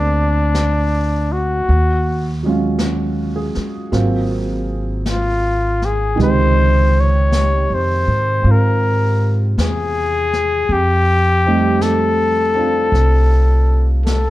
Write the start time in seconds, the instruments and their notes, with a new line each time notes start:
Already playing: upright bass D2, grand piano G3 A3 A#3 C4 D4, trumpet D4
0.55 brush sweep, snare, hi-hat pedal
1.32 trumpet F#4
1.66 upright bass D#2, brush sweep
2.43 grand piano F#3 G#3 C#4
2.49 grand piano F4
2.79 grand piano F#4, brush sweep, snare, hi-hat pedal
3.36 grand piano G#4
3.55 muted upright bass stroke, snare
3.92 upright bass G#1, grand piano F#3 A#3 C4 F4, brush sweep, snare
5.06 brush sweep, snare, hi-hat pedal
5.10 trumpet F4
5.82 trumpet G#4, snare
6.16 upright bass C#2, grand piano C3 D#3 G#3, brush sweep, snare
6.21 grand piano D#4, trumpet C5
7.00 trumpet C#5
7.32 brush sweep, snare, hi-hat pedal
7.70 upright bass F2
7.75 trumpet C5
8.08 upright bass G#2
8.43 upright bass G#2, grand piano C4 F4, brush sweep
8.51 trumpet A#4
9.58 upright bass E2, trumpet G#4, brush sweep, snare, hi-hat pedal
10.33 snare
10.69 upright bass F2, trumpet G4, brush sweep
11.46 grand piano G3 A3 C4 D#4
11.81 trumpet A4, brush sweep, snare, hi-hat pedal
12.55 grand piano C4 D4 F4
12.92 upright bass C2, brush sweep, snare
14.06 trumpet A4, brush sweep, snare, hi-hat pedal